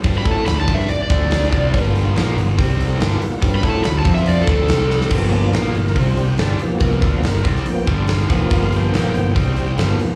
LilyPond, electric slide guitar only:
\new Staff \with { instrumentName = "Electric slide guitar" } { \time 4/4 \key d \dorian \tempo 4 = 142 \tuplet 3/2 { r8 b''8 a''8 b''8 a''8 e''8 d''8 d''4~ } d''4~ | d''8 r2. r8 | \tuplet 3/2 { r8 b''8 a''8 b''8 a''8 e''8 d''8 a'4~ } a'4 | r1 |
r1 | r1 | }